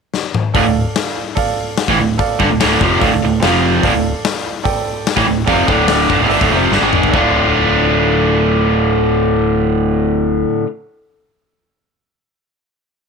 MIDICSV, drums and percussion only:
0, 0, Header, 1, 2, 480
1, 0, Start_track
1, 0, Key_signature, -1, "minor"
1, 0, Tempo, 411805
1, 632, Time_signature, 4, 2, 24, 8
1, 7351, Tempo, 416089
1, 15165, End_track
2, 0, Start_track
2, 0, Title_t, "Drums"
2, 157, Note_on_c, 9, 38, 66
2, 274, Note_off_c, 9, 38, 0
2, 401, Note_on_c, 9, 47, 81
2, 517, Note_off_c, 9, 47, 0
2, 636, Note_on_c, 9, 36, 94
2, 640, Note_on_c, 9, 46, 56
2, 753, Note_off_c, 9, 36, 0
2, 757, Note_off_c, 9, 46, 0
2, 1117, Note_on_c, 9, 38, 112
2, 1117, Note_on_c, 9, 46, 58
2, 1233, Note_off_c, 9, 38, 0
2, 1233, Note_off_c, 9, 46, 0
2, 1593, Note_on_c, 9, 46, 62
2, 1595, Note_on_c, 9, 36, 99
2, 1710, Note_off_c, 9, 46, 0
2, 1712, Note_off_c, 9, 36, 0
2, 2069, Note_on_c, 9, 38, 102
2, 2069, Note_on_c, 9, 46, 58
2, 2186, Note_off_c, 9, 38, 0
2, 2186, Note_off_c, 9, 46, 0
2, 2193, Note_on_c, 9, 36, 97
2, 2310, Note_off_c, 9, 36, 0
2, 2555, Note_on_c, 9, 36, 96
2, 2555, Note_on_c, 9, 46, 54
2, 2671, Note_off_c, 9, 36, 0
2, 2671, Note_off_c, 9, 46, 0
2, 2796, Note_on_c, 9, 36, 98
2, 2912, Note_off_c, 9, 36, 0
2, 3039, Note_on_c, 9, 38, 116
2, 3039, Note_on_c, 9, 46, 61
2, 3155, Note_off_c, 9, 38, 0
2, 3155, Note_off_c, 9, 46, 0
2, 3275, Note_on_c, 9, 36, 103
2, 3392, Note_off_c, 9, 36, 0
2, 3515, Note_on_c, 9, 36, 106
2, 3526, Note_on_c, 9, 46, 59
2, 3631, Note_off_c, 9, 36, 0
2, 3643, Note_off_c, 9, 46, 0
2, 3994, Note_on_c, 9, 38, 105
2, 3994, Note_on_c, 9, 46, 51
2, 4110, Note_off_c, 9, 38, 0
2, 4110, Note_off_c, 9, 46, 0
2, 4469, Note_on_c, 9, 36, 91
2, 4477, Note_on_c, 9, 46, 54
2, 4585, Note_off_c, 9, 36, 0
2, 4594, Note_off_c, 9, 46, 0
2, 4952, Note_on_c, 9, 38, 125
2, 4952, Note_on_c, 9, 46, 62
2, 5068, Note_off_c, 9, 38, 0
2, 5068, Note_off_c, 9, 46, 0
2, 5425, Note_on_c, 9, 36, 98
2, 5427, Note_on_c, 9, 46, 62
2, 5541, Note_off_c, 9, 36, 0
2, 5544, Note_off_c, 9, 46, 0
2, 5908, Note_on_c, 9, 38, 107
2, 5908, Note_on_c, 9, 46, 56
2, 6024, Note_on_c, 9, 36, 102
2, 6025, Note_off_c, 9, 38, 0
2, 6025, Note_off_c, 9, 46, 0
2, 6029, Note_on_c, 9, 38, 32
2, 6140, Note_off_c, 9, 36, 0
2, 6145, Note_off_c, 9, 38, 0
2, 6379, Note_on_c, 9, 46, 55
2, 6382, Note_on_c, 9, 36, 95
2, 6496, Note_off_c, 9, 46, 0
2, 6499, Note_off_c, 9, 36, 0
2, 6623, Note_on_c, 9, 36, 97
2, 6740, Note_off_c, 9, 36, 0
2, 6855, Note_on_c, 9, 38, 117
2, 6855, Note_on_c, 9, 46, 61
2, 6972, Note_off_c, 9, 38, 0
2, 6972, Note_off_c, 9, 46, 0
2, 7108, Note_on_c, 9, 36, 96
2, 7225, Note_off_c, 9, 36, 0
2, 7348, Note_on_c, 9, 46, 57
2, 7463, Note_off_c, 9, 46, 0
2, 7472, Note_on_c, 9, 36, 97
2, 7587, Note_off_c, 9, 36, 0
2, 7828, Note_on_c, 9, 38, 60
2, 7944, Note_off_c, 9, 38, 0
2, 8068, Note_on_c, 9, 45, 79
2, 8183, Note_off_c, 9, 45, 0
2, 8190, Note_on_c, 9, 43, 83
2, 8306, Note_off_c, 9, 43, 0
2, 8307, Note_on_c, 9, 36, 91
2, 8423, Note_off_c, 9, 36, 0
2, 15165, End_track
0, 0, End_of_file